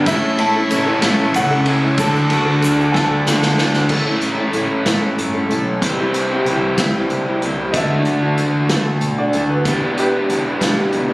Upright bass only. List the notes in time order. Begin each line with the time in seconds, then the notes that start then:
0.07 A1
0.72 A1
1.03 A1
1.35 C#2
1.98 D2
2.31 D2
2.62 D2
2.94 D2
3.26 D2
3.58 D2
3.90 A1
4.21 A1
4.54 A1
4.86 A1
5.19 G2
5.49 B1
5.83 C2
6.44 C2
7.10 C2
7.42 C2
7.74 D2
8.07 D2
8.39 D2
8.70 D2
9.01 B2
9.34 D2
9.65 E1
10.29 E1
10.62 E1
10.93 E1